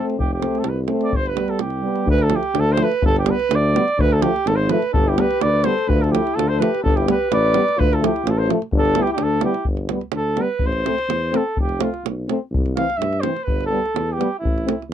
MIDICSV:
0, 0, Header, 1, 7, 480
1, 0, Start_track
1, 0, Tempo, 475059
1, 178, Time_signature, 2, 2, 24, 8
1, 15088, End_track
2, 0, Start_track
2, 0, Title_t, "Flugelhorn"
2, 0, Program_c, 0, 56
2, 197, Note_on_c, 0, 67, 86
2, 304, Note_off_c, 0, 67, 0
2, 337, Note_on_c, 0, 67, 63
2, 596, Note_on_c, 0, 69, 69
2, 611, Note_off_c, 0, 67, 0
2, 692, Note_on_c, 0, 71, 61
2, 707, Note_off_c, 0, 69, 0
2, 801, Note_off_c, 0, 71, 0
2, 1052, Note_on_c, 0, 74, 89
2, 1165, Note_on_c, 0, 72, 103
2, 1180, Note_off_c, 0, 74, 0
2, 1289, Note_on_c, 0, 71, 84
2, 1304, Note_off_c, 0, 72, 0
2, 1511, Note_on_c, 0, 69, 71
2, 1526, Note_off_c, 0, 71, 0
2, 1626, Note_on_c, 0, 67, 74
2, 1641, Note_off_c, 0, 69, 0
2, 2109, Note_off_c, 0, 67, 0
2, 2129, Note_on_c, 0, 71, 105
2, 2248, Note_on_c, 0, 69, 87
2, 2263, Note_off_c, 0, 71, 0
2, 2378, Note_on_c, 0, 67, 98
2, 2393, Note_off_c, 0, 69, 0
2, 2625, Note_on_c, 0, 69, 104
2, 2640, Note_off_c, 0, 67, 0
2, 2751, Note_on_c, 0, 72, 100
2, 2767, Note_off_c, 0, 69, 0
2, 2864, Note_on_c, 0, 71, 99
2, 2879, Note_off_c, 0, 72, 0
2, 3087, Note_off_c, 0, 71, 0
2, 3091, Note_on_c, 0, 69, 110
2, 3196, Note_off_c, 0, 69, 0
2, 3221, Note_on_c, 0, 67, 95
2, 3336, Note_on_c, 0, 71, 118
2, 3351, Note_off_c, 0, 67, 0
2, 3589, Note_on_c, 0, 74, 109
2, 3604, Note_off_c, 0, 71, 0
2, 4047, Note_on_c, 0, 71, 112
2, 4062, Note_off_c, 0, 74, 0
2, 4170, Note_on_c, 0, 69, 88
2, 4185, Note_off_c, 0, 71, 0
2, 4265, Note_on_c, 0, 67, 106
2, 4280, Note_off_c, 0, 69, 0
2, 4521, Note_on_c, 0, 69, 91
2, 4536, Note_off_c, 0, 67, 0
2, 4606, Note_on_c, 0, 72, 91
2, 4621, Note_off_c, 0, 69, 0
2, 4751, Note_on_c, 0, 71, 92
2, 4767, Note_off_c, 0, 72, 0
2, 4977, Note_off_c, 0, 71, 0
2, 4983, Note_on_c, 0, 69, 100
2, 5136, Note_on_c, 0, 67, 83
2, 5151, Note_off_c, 0, 69, 0
2, 5252, Note_on_c, 0, 71, 99
2, 5267, Note_off_c, 0, 67, 0
2, 5472, Note_on_c, 0, 74, 102
2, 5487, Note_off_c, 0, 71, 0
2, 5706, Note_on_c, 0, 72, 96
2, 5721, Note_off_c, 0, 74, 0
2, 5942, Note_on_c, 0, 71, 111
2, 5958, Note_off_c, 0, 72, 0
2, 6081, Note_on_c, 0, 69, 78
2, 6096, Note_off_c, 0, 71, 0
2, 6178, Note_on_c, 0, 67, 93
2, 6193, Note_off_c, 0, 69, 0
2, 6416, Note_on_c, 0, 69, 98
2, 6431, Note_off_c, 0, 67, 0
2, 6547, Note_on_c, 0, 72, 89
2, 6562, Note_off_c, 0, 69, 0
2, 6659, Note_on_c, 0, 71, 88
2, 6674, Note_off_c, 0, 72, 0
2, 6898, Note_off_c, 0, 71, 0
2, 6905, Note_on_c, 0, 69, 102
2, 7034, Note_on_c, 0, 67, 76
2, 7049, Note_off_c, 0, 69, 0
2, 7144, Note_off_c, 0, 67, 0
2, 7175, Note_on_c, 0, 71, 93
2, 7380, Note_off_c, 0, 71, 0
2, 7413, Note_on_c, 0, 74, 108
2, 7872, Note_on_c, 0, 71, 106
2, 7887, Note_off_c, 0, 74, 0
2, 8015, Note_on_c, 0, 69, 87
2, 8030, Note_off_c, 0, 71, 0
2, 8131, Note_on_c, 0, 67, 77
2, 8146, Note_off_c, 0, 69, 0
2, 8383, Note_on_c, 0, 69, 82
2, 8398, Note_off_c, 0, 67, 0
2, 8469, Note_on_c, 0, 72, 82
2, 8485, Note_off_c, 0, 69, 0
2, 8579, Note_off_c, 0, 72, 0
2, 8878, Note_on_c, 0, 69, 112
2, 9114, Note_on_c, 0, 67, 99
2, 9130, Note_off_c, 0, 69, 0
2, 9205, Note_off_c, 0, 67, 0
2, 9218, Note_on_c, 0, 67, 87
2, 9328, Note_on_c, 0, 69, 99
2, 9343, Note_off_c, 0, 67, 0
2, 9539, Note_off_c, 0, 69, 0
2, 9545, Note_on_c, 0, 67, 80
2, 9761, Note_off_c, 0, 67, 0
2, 10273, Note_on_c, 0, 69, 87
2, 10521, Note_on_c, 0, 71, 86
2, 10536, Note_off_c, 0, 69, 0
2, 10772, Note_on_c, 0, 72, 108
2, 10787, Note_off_c, 0, 71, 0
2, 11476, Note_on_c, 0, 69, 86
2, 11491, Note_off_c, 0, 72, 0
2, 11703, Note_off_c, 0, 69, 0
2, 11723, Note_on_c, 0, 67, 80
2, 11947, Note_on_c, 0, 65, 67
2, 11962, Note_off_c, 0, 67, 0
2, 12179, Note_off_c, 0, 65, 0
2, 12901, Note_on_c, 0, 77, 107
2, 13108, Note_on_c, 0, 76, 93
2, 13123, Note_off_c, 0, 77, 0
2, 13343, Note_on_c, 0, 72, 79
2, 13358, Note_off_c, 0, 76, 0
2, 13575, Note_on_c, 0, 71, 80
2, 13590, Note_off_c, 0, 72, 0
2, 13793, Note_off_c, 0, 71, 0
2, 13799, Note_on_c, 0, 69, 88
2, 14270, Note_on_c, 0, 67, 82
2, 14286, Note_off_c, 0, 69, 0
2, 14536, Note_off_c, 0, 67, 0
2, 14542, Note_on_c, 0, 64, 75
2, 15004, Note_off_c, 0, 64, 0
2, 15088, End_track
3, 0, Start_track
3, 0, Title_t, "Flugelhorn"
3, 0, Program_c, 1, 56
3, 4978, Note_on_c, 1, 62, 76
3, 5118, Note_on_c, 1, 64, 76
3, 5133, Note_off_c, 1, 62, 0
3, 5227, Note_on_c, 1, 67, 84
3, 5242, Note_off_c, 1, 64, 0
3, 5479, Note_on_c, 1, 71, 79
3, 5495, Note_off_c, 1, 67, 0
3, 5728, Note_on_c, 1, 69, 79
3, 5743, Note_off_c, 1, 71, 0
3, 5962, Note_on_c, 1, 65, 67
3, 5977, Note_off_c, 1, 69, 0
3, 6107, Note_off_c, 1, 65, 0
3, 6107, Note_on_c, 1, 65, 68
3, 6206, Note_on_c, 1, 64, 69
3, 6221, Note_off_c, 1, 65, 0
3, 6436, Note_on_c, 1, 65, 65
3, 6451, Note_off_c, 1, 64, 0
3, 6564, Note_on_c, 1, 69, 82
3, 6580, Note_off_c, 1, 65, 0
3, 6688, Note_on_c, 1, 67, 74
3, 6704, Note_off_c, 1, 69, 0
3, 6913, Note_off_c, 1, 67, 0
3, 6921, Note_on_c, 1, 62, 76
3, 7045, Note_on_c, 1, 64, 72
3, 7060, Note_off_c, 1, 62, 0
3, 7144, Note_off_c, 1, 64, 0
3, 7150, Note_on_c, 1, 67, 72
3, 7367, Note_off_c, 1, 67, 0
3, 7380, Note_on_c, 1, 71, 94
3, 7855, Note_on_c, 1, 65, 77
3, 7870, Note_off_c, 1, 71, 0
3, 7967, Note_off_c, 1, 65, 0
3, 7967, Note_on_c, 1, 65, 64
3, 8108, Note_on_c, 1, 64, 66
3, 8124, Note_off_c, 1, 65, 0
3, 8321, Note_on_c, 1, 65, 71
3, 8337, Note_off_c, 1, 64, 0
3, 8441, Note_on_c, 1, 69, 65
3, 8456, Note_off_c, 1, 65, 0
3, 8565, Note_off_c, 1, 69, 0
3, 8844, Note_on_c, 1, 62, 87
3, 9057, Note_on_c, 1, 64, 79
3, 9072, Note_off_c, 1, 62, 0
3, 9146, Note_off_c, 1, 64, 0
3, 9152, Note_on_c, 1, 64, 74
3, 9252, Note_on_c, 1, 62, 76
3, 9267, Note_off_c, 1, 64, 0
3, 9498, Note_off_c, 1, 62, 0
3, 9505, Note_on_c, 1, 64, 57
3, 9739, Note_off_c, 1, 64, 0
3, 15088, End_track
4, 0, Start_track
4, 0, Title_t, "French horn"
4, 0, Program_c, 2, 60
4, 0, Note_on_c, 2, 60, 61
4, 171, Note_off_c, 2, 60, 0
4, 412, Note_on_c, 2, 60, 60
4, 653, Note_off_c, 2, 60, 0
4, 909, Note_on_c, 2, 60, 69
4, 1143, Note_off_c, 2, 60, 0
4, 1387, Note_on_c, 2, 59, 50
4, 1623, Note_off_c, 2, 59, 0
4, 1860, Note_on_c, 2, 59, 56
4, 2100, Note_off_c, 2, 59, 0
4, 2348, Note_on_c, 2, 57, 62
4, 2444, Note_off_c, 2, 57, 0
4, 2822, Note_on_c, 2, 57, 73
4, 2920, Note_off_c, 2, 57, 0
4, 3310, Note_on_c, 2, 59, 67
4, 3406, Note_off_c, 2, 59, 0
4, 3791, Note_on_c, 2, 59, 72
4, 3886, Note_off_c, 2, 59, 0
4, 4273, Note_on_c, 2, 57, 66
4, 4367, Note_off_c, 2, 57, 0
4, 4761, Note_on_c, 2, 57, 76
4, 4854, Note_off_c, 2, 57, 0
4, 5231, Note_on_c, 2, 59, 65
4, 5325, Note_off_c, 2, 59, 0
4, 5698, Note_on_c, 2, 59, 65
4, 5795, Note_off_c, 2, 59, 0
4, 6187, Note_on_c, 2, 57, 51
4, 6282, Note_off_c, 2, 57, 0
4, 6672, Note_on_c, 2, 57, 73
4, 6765, Note_off_c, 2, 57, 0
4, 7131, Note_on_c, 2, 59, 66
4, 7228, Note_off_c, 2, 59, 0
4, 7625, Note_on_c, 2, 59, 71
4, 7718, Note_off_c, 2, 59, 0
4, 8099, Note_on_c, 2, 57, 73
4, 8194, Note_off_c, 2, 57, 0
4, 8581, Note_on_c, 2, 57, 71
4, 8675, Note_off_c, 2, 57, 0
4, 9065, Note_on_c, 2, 59, 59
4, 9158, Note_off_c, 2, 59, 0
4, 9526, Note_on_c, 2, 59, 61
4, 9623, Note_off_c, 2, 59, 0
4, 10011, Note_on_c, 2, 59, 50
4, 10107, Note_off_c, 2, 59, 0
4, 10481, Note_on_c, 2, 59, 55
4, 10579, Note_off_c, 2, 59, 0
4, 10969, Note_on_c, 2, 60, 51
4, 11065, Note_off_c, 2, 60, 0
4, 11445, Note_on_c, 2, 60, 76
4, 11542, Note_off_c, 2, 60, 0
4, 11922, Note_on_c, 2, 60, 61
4, 12020, Note_off_c, 2, 60, 0
4, 12418, Note_on_c, 2, 60, 66
4, 12513, Note_off_c, 2, 60, 0
4, 12914, Note_on_c, 2, 60, 50
4, 13006, Note_off_c, 2, 60, 0
4, 13358, Note_on_c, 2, 60, 53
4, 13457, Note_off_c, 2, 60, 0
4, 13851, Note_on_c, 2, 59, 54
4, 13948, Note_off_c, 2, 59, 0
4, 14334, Note_on_c, 2, 59, 70
4, 14430, Note_off_c, 2, 59, 0
4, 14801, Note_on_c, 2, 60, 55
4, 14900, Note_off_c, 2, 60, 0
4, 15088, End_track
5, 0, Start_track
5, 0, Title_t, "Euphonium"
5, 0, Program_c, 3, 58
5, 0, Note_on_c, 3, 57, 53
5, 164, Note_off_c, 3, 57, 0
5, 393, Note_on_c, 3, 57, 51
5, 643, Note_off_c, 3, 57, 0
5, 874, Note_on_c, 3, 57, 55
5, 1125, Note_off_c, 3, 57, 0
5, 1360, Note_on_c, 3, 55, 49
5, 1609, Note_off_c, 3, 55, 0
5, 1828, Note_on_c, 3, 55, 48
5, 2084, Note_off_c, 3, 55, 0
5, 2326, Note_on_c, 3, 53, 58
5, 2427, Note_off_c, 3, 53, 0
5, 2803, Note_on_c, 3, 53, 59
5, 2905, Note_off_c, 3, 53, 0
5, 3292, Note_on_c, 3, 55, 60
5, 3392, Note_off_c, 3, 55, 0
5, 3777, Note_on_c, 3, 55, 58
5, 3876, Note_off_c, 3, 55, 0
5, 4254, Note_on_c, 3, 53, 71
5, 4352, Note_off_c, 3, 53, 0
5, 4727, Note_on_c, 3, 53, 63
5, 4827, Note_off_c, 3, 53, 0
5, 5222, Note_on_c, 3, 55, 58
5, 5318, Note_off_c, 3, 55, 0
5, 5704, Note_on_c, 3, 55, 53
5, 5799, Note_off_c, 3, 55, 0
5, 6173, Note_on_c, 3, 53, 54
5, 6270, Note_off_c, 3, 53, 0
5, 6653, Note_on_c, 3, 53, 54
5, 6750, Note_off_c, 3, 53, 0
5, 7144, Note_on_c, 3, 55, 65
5, 7238, Note_off_c, 3, 55, 0
5, 7619, Note_on_c, 3, 55, 64
5, 7714, Note_off_c, 3, 55, 0
5, 8104, Note_on_c, 3, 53, 54
5, 8197, Note_off_c, 3, 53, 0
5, 8568, Note_on_c, 3, 53, 59
5, 8664, Note_off_c, 3, 53, 0
5, 9064, Note_on_c, 3, 55, 51
5, 9157, Note_off_c, 3, 55, 0
5, 9540, Note_on_c, 3, 55, 57
5, 9634, Note_off_c, 3, 55, 0
5, 10004, Note_on_c, 3, 55, 42
5, 10101, Note_off_c, 3, 55, 0
5, 10486, Note_on_c, 3, 55, 48
5, 10583, Note_off_c, 3, 55, 0
5, 10967, Note_on_c, 3, 57, 58
5, 11064, Note_off_c, 3, 57, 0
5, 11436, Note_on_c, 3, 57, 52
5, 11535, Note_off_c, 3, 57, 0
5, 11933, Note_on_c, 3, 57, 53
5, 12029, Note_off_c, 3, 57, 0
5, 12413, Note_on_c, 3, 57, 59
5, 12508, Note_off_c, 3, 57, 0
5, 12899, Note_on_c, 3, 52, 53
5, 12993, Note_off_c, 3, 52, 0
5, 13386, Note_on_c, 3, 52, 44
5, 13480, Note_off_c, 3, 52, 0
5, 13855, Note_on_c, 3, 55, 53
5, 13951, Note_off_c, 3, 55, 0
5, 14335, Note_on_c, 3, 55, 57
5, 14431, Note_off_c, 3, 55, 0
5, 14811, Note_on_c, 3, 57, 52
5, 14908, Note_off_c, 3, 57, 0
5, 15088, End_track
6, 0, Start_track
6, 0, Title_t, "Tuba"
6, 0, Program_c, 4, 58
6, 166, Note_on_c, 4, 29, 82
6, 436, Note_off_c, 4, 29, 0
6, 637, Note_on_c, 4, 36, 90
6, 909, Note_off_c, 4, 36, 0
6, 1114, Note_on_c, 4, 31, 78
6, 1388, Note_off_c, 4, 31, 0
6, 1605, Note_on_c, 4, 36, 70
6, 1876, Note_off_c, 4, 36, 0
6, 2084, Note_on_c, 4, 38, 105
6, 2355, Note_off_c, 4, 38, 0
6, 2568, Note_on_c, 4, 38, 99
6, 2838, Note_off_c, 4, 38, 0
6, 3058, Note_on_c, 4, 31, 98
6, 3326, Note_off_c, 4, 31, 0
6, 3542, Note_on_c, 4, 38, 104
6, 3807, Note_off_c, 4, 38, 0
6, 4022, Note_on_c, 4, 38, 106
6, 4287, Note_off_c, 4, 38, 0
6, 4501, Note_on_c, 4, 32, 102
6, 4766, Note_off_c, 4, 32, 0
6, 4987, Note_on_c, 4, 31, 104
6, 5250, Note_off_c, 4, 31, 0
6, 5469, Note_on_c, 4, 38, 92
6, 5731, Note_off_c, 4, 38, 0
6, 5941, Note_on_c, 4, 38, 106
6, 6204, Note_off_c, 4, 38, 0
6, 6426, Note_on_c, 4, 38, 89
6, 6687, Note_off_c, 4, 38, 0
6, 6896, Note_on_c, 4, 31, 96
6, 7159, Note_off_c, 4, 31, 0
6, 7380, Note_on_c, 4, 33, 98
6, 7642, Note_off_c, 4, 33, 0
6, 7862, Note_on_c, 4, 38, 91
6, 8123, Note_off_c, 4, 38, 0
6, 8324, Note_on_c, 4, 33, 104
6, 8590, Note_off_c, 4, 33, 0
6, 8808, Note_on_c, 4, 31, 111
6, 9072, Note_off_c, 4, 31, 0
6, 9267, Note_on_c, 4, 38, 85
6, 9537, Note_off_c, 4, 38, 0
6, 9750, Note_on_c, 4, 31, 82
6, 10019, Note_off_c, 4, 31, 0
6, 10230, Note_on_c, 4, 38, 79
6, 10499, Note_off_c, 4, 38, 0
6, 10702, Note_on_c, 4, 33, 90
6, 10973, Note_off_c, 4, 33, 0
6, 11196, Note_on_c, 4, 40, 80
6, 11464, Note_off_c, 4, 40, 0
6, 11684, Note_on_c, 4, 29, 83
6, 11950, Note_off_c, 4, 29, 0
6, 12167, Note_on_c, 4, 35, 79
6, 12432, Note_off_c, 4, 35, 0
6, 12636, Note_on_c, 4, 36, 98
6, 12905, Note_off_c, 4, 36, 0
6, 13119, Note_on_c, 4, 43, 79
6, 13387, Note_off_c, 4, 43, 0
6, 13612, Note_on_c, 4, 31, 83
6, 13876, Note_off_c, 4, 31, 0
6, 14085, Note_on_c, 4, 40, 79
6, 14352, Note_off_c, 4, 40, 0
6, 14567, Note_on_c, 4, 33, 83
6, 14833, Note_off_c, 4, 33, 0
6, 15041, Note_on_c, 4, 40, 91
6, 15088, Note_off_c, 4, 40, 0
6, 15088, End_track
7, 0, Start_track
7, 0, Title_t, "Davul"
7, 98, Note_on_c, 9, 37, 22
7, 199, Note_off_c, 9, 37, 0
7, 202, Note_on_c, 9, 43, 83
7, 303, Note_off_c, 9, 43, 0
7, 429, Note_on_c, 9, 37, 62
7, 530, Note_off_c, 9, 37, 0
7, 555, Note_on_c, 9, 37, 22
7, 648, Note_off_c, 9, 37, 0
7, 648, Note_on_c, 9, 37, 60
7, 749, Note_off_c, 9, 37, 0
7, 887, Note_on_c, 9, 37, 53
7, 988, Note_off_c, 9, 37, 0
7, 1019, Note_on_c, 9, 37, 23
7, 1120, Note_off_c, 9, 37, 0
7, 1139, Note_on_c, 9, 43, 82
7, 1240, Note_off_c, 9, 43, 0
7, 1273, Note_on_c, 9, 37, 23
7, 1374, Note_off_c, 9, 37, 0
7, 1382, Note_on_c, 9, 37, 64
7, 1483, Note_off_c, 9, 37, 0
7, 1496, Note_on_c, 9, 37, 23
7, 1597, Note_off_c, 9, 37, 0
7, 1609, Note_on_c, 9, 37, 63
7, 1710, Note_off_c, 9, 37, 0
7, 1721, Note_on_c, 9, 37, 21
7, 1822, Note_off_c, 9, 37, 0
7, 1976, Note_on_c, 9, 37, 23
7, 2077, Note_off_c, 9, 37, 0
7, 2095, Note_on_c, 9, 43, 90
7, 2196, Note_off_c, 9, 43, 0
7, 2208, Note_on_c, 9, 37, 25
7, 2309, Note_off_c, 9, 37, 0
7, 2320, Note_on_c, 9, 37, 63
7, 2421, Note_off_c, 9, 37, 0
7, 2453, Note_on_c, 9, 37, 26
7, 2554, Note_off_c, 9, 37, 0
7, 2574, Note_on_c, 9, 37, 69
7, 2675, Note_off_c, 9, 37, 0
7, 2804, Note_on_c, 9, 37, 68
7, 2905, Note_off_c, 9, 37, 0
7, 2946, Note_on_c, 9, 37, 26
7, 3047, Note_off_c, 9, 37, 0
7, 3055, Note_on_c, 9, 43, 115
7, 3156, Note_off_c, 9, 43, 0
7, 3197, Note_on_c, 9, 37, 31
7, 3294, Note_off_c, 9, 37, 0
7, 3294, Note_on_c, 9, 37, 71
7, 3395, Note_off_c, 9, 37, 0
7, 3430, Note_on_c, 9, 37, 27
7, 3531, Note_off_c, 9, 37, 0
7, 3546, Note_on_c, 9, 37, 80
7, 3647, Note_off_c, 9, 37, 0
7, 3799, Note_on_c, 9, 37, 65
7, 3900, Note_off_c, 9, 37, 0
7, 3921, Note_on_c, 9, 37, 25
7, 4022, Note_off_c, 9, 37, 0
7, 4031, Note_on_c, 9, 43, 102
7, 4132, Note_off_c, 9, 43, 0
7, 4150, Note_on_c, 9, 37, 27
7, 4251, Note_off_c, 9, 37, 0
7, 4268, Note_on_c, 9, 37, 73
7, 4369, Note_off_c, 9, 37, 0
7, 4406, Note_on_c, 9, 37, 28
7, 4507, Note_off_c, 9, 37, 0
7, 4517, Note_on_c, 9, 37, 63
7, 4618, Note_off_c, 9, 37, 0
7, 4743, Note_on_c, 9, 37, 61
7, 4844, Note_off_c, 9, 37, 0
7, 4874, Note_on_c, 9, 37, 26
7, 4975, Note_off_c, 9, 37, 0
7, 4991, Note_on_c, 9, 43, 109
7, 5093, Note_off_c, 9, 43, 0
7, 5234, Note_on_c, 9, 37, 70
7, 5335, Note_off_c, 9, 37, 0
7, 5361, Note_on_c, 9, 37, 27
7, 5462, Note_off_c, 9, 37, 0
7, 5471, Note_on_c, 9, 37, 68
7, 5572, Note_off_c, 9, 37, 0
7, 5698, Note_on_c, 9, 37, 65
7, 5799, Note_off_c, 9, 37, 0
7, 5844, Note_on_c, 9, 37, 22
7, 5945, Note_off_c, 9, 37, 0
7, 5957, Note_on_c, 9, 43, 93
7, 6058, Note_off_c, 9, 43, 0
7, 6102, Note_on_c, 9, 37, 25
7, 6203, Note_off_c, 9, 37, 0
7, 6210, Note_on_c, 9, 37, 69
7, 6311, Note_off_c, 9, 37, 0
7, 6334, Note_on_c, 9, 37, 27
7, 6435, Note_off_c, 9, 37, 0
7, 6459, Note_on_c, 9, 37, 72
7, 6560, Note_off_c, 9, 37, 0
7, 6691, Note_on_c, 9, 37, 69
7, 6792, Note_off_c, 9, 37, 0
7, 6816, Note_on_c, 9, 37, 25
7, 6917, Note_off_c, 9, 37, 0
7, 6930, Note_on_c, 9, 43, 99
7, 7031, Note_off_c, 9, 43, 0
7, 7045, Note_on_c, 9, 37, 28
7, 7146, Note_off_c, 9, 37, 0
7, 7157, Note_on_c, 9, 37, 72
7, 7259, Note_off_c, 9, 37, 0
7, 7394, Note_on_c, 9, 37, 74
7, 7495, Note_off_c, 9, 37, 0
7, 7621, Note_on_c, 9, 37, 71
7, 7722, Note_off_c, 9, 37, 0
7, 7765, Note_on_c, 9, 37, 31
7, 7866, Note_off_c, 9, 37, 0
7, 7887, Note_on_c, 9, 43, 105
7, 7988, Note_off_c, 9, 43, 0
7, 8011, Note_on_c, 9, 37, 29
7, 8113, Note_off_c, 9, 37, 0
7, 8124, Note_on_c, 9, 37, 82
7, 8225, Note_off_c, 9, 37, 0
7, 8245, Note_on_c, 9, 37, 28
7, 8347, Note_off_c, 9, 37, 0
7, 8356, Note_on_c, 9, 37, 72
7, 8457, Note_off_c, 9, 37, 0
7, 8593, Note_on_c, 9, 37, 58
7, 8694, Note_off_c, 9, 37, 0
7, 8710, Note_on_c, 9, 37, 24
7, 8811, Note_off_c, 9, 37, 0
7, 8815, Note_on_c, 9, 43, 91
7, 8916, Note_off_c, 9, 43, 0
7, 8944, Note_on_c, 9, 37, 22
7, 9044, Note_off_c, 9, 37, 0
7, 9044, Note_on_c, 9, 37, 65
7, 9145, Note_off_c, 9, 37, 0
7, 9167, Note_on_c, 9, 37, 27
7, 9268, Note_off_c, 9, 37, 0
7, 9275, Note_on_c, 9, 37, 65
7, 9376, Note_off_c, 9, 37, 0
7, 9510, Note_on_c, 9, 37, 64
7, 9611, Note_off_c, 9, 37, 0
7, 9643, Note_on_c, 9, 37, 27
7, 9744, Note_off_c, 9, 37, 0
7, 9749, Note_on_c, 9, 43, 81
7, 9850, Note_off_c, 9, 43, 0
7, 9872, Note_on_c, 9, 37, 23
7, 9973, Note_off_c, 9, 37, 0
7, 9992, Note_on_c, 9, 37, 64
7, 10093, Note_off_c, 9, 37, 0
7, 10118, Note_on_c, 9, 37, 22
7, 10219, Note_off_c, 9, 37, 0
7, 10222, Note_on_c, 9, 37, 70
7, 10323, Note_off_c, 9, 37, 0
7, 10476, Note_on_c, 9, 37, 57
7, 10577, Note_off_c, 9, 37, 0
7, 10703, Note_on_c, 9, 43, 84
7, 10804, Note_off_c, 9, 43, 0
7, 10835, Note_on_c, 9, 37, 23
7, 10936, Note_off_c, 9, 37, 0
7, 10973, Note_on_c, 9, 37, 60
7, 11074, Note_off_c, 9, 37, 0
7, 11098, Note_on_c, 9, 37, 26
7, 11199, Note_off_c, 9, 37, 0
7, 11214, Note_on_c, 9, 37, 65
7, 11315, Note_off_c, 9, 37, 0
7, 11458, Note_on_c, 9, 37, 62
7, 11559, Note_off_c, 9, 37, 0
7, 11689, Note_on_c, 9, 43, 87
7, 11790, Note_off_c, 9, 43, 0
7, 11811, Note_on_c, 9, 37, 25
7, 11912, Note_off_c, 9, 37, 0
7, 11928, Note_on_c, 9, 37, 73
7, 12029, Note_off_c, 9, 37, 0
7, 12062, Note_on_c, 9, 37, 25
7, 12163, Note_off_c, 9, 37, 0
7, 12184, Note_on_c, 9, 37, 69
7, 12285, Note_off_c, 9, 37, 0
7, 12423, Note_on_c, 9, 37, 53
7, 12524, Note_off_c, 9, 37, 0
7, 12675, Note_on_c, 9, 43, 101
7, 12776, Note_off_c, 9, 43, 0
7, 12789, Note_on_c, 9, 37, 22
7, 12890, Note_off_c, 9, 37, 0
7, 12903, Note_on_c, 9, 37, 66
7, 13004, Note_off_c, 9, 37, 0
7, 13031, Note_on_c, 9, 37, 27
7, 13132, Note_off_c, 9, 37, 0
7, 13153, Note_on_c, 9, 37, 63
7, 13254, Note_off_c, 9, 37, 0
7, 13263, Note_on_c, 9, 37, 26
7, 13364, Note_off_c, 9, 37, 0
7, 13371, Note_on_c, 9, 37, 59
7, 13472, Note_off_c, 9, 37, 0
7, 13504, Note_on_c, 9, 37, 24
7, 13605, Note_off_c, 9, 37, 0
7, 13616, Note_on_c, 9, 43, 84
7, 13717, Note_off_c, 9, 43, 0
7, 13748, Note_on_c, 9, 37, 23
7, 13849, Note_off_c, 9, 37, 0
7, 13999, Note_on_c, 9, 37, 23
7, 14100, Note_off_c, 9, 37, 0
7, 14107, Note_on_c, 9, 37, 66
7, 14208, Note_off_c, 9, 37, 0
7, 14355, Note_on_c, 9, 37, 53
7, 14456, Note_off_c, 9, 37, 0
7, 14603, Note_on_c, 9, 43, 91
7, 14704, Note_off_c, 9, 43, 0
7, 14729, Note_on_c, 9, 37, 23
7, 14830, Note_off_c, 9, 37, 0
7, 14838, Note_on_c, 9, 37, 61
7, 14939, Note_off_c, 9, 37, 0
7, 14978, Note_on_c, 9, 37, 22
7, 15079, Note_off_c, 9, 37, 0
7, 15088, End_track
0, 0, End_of_file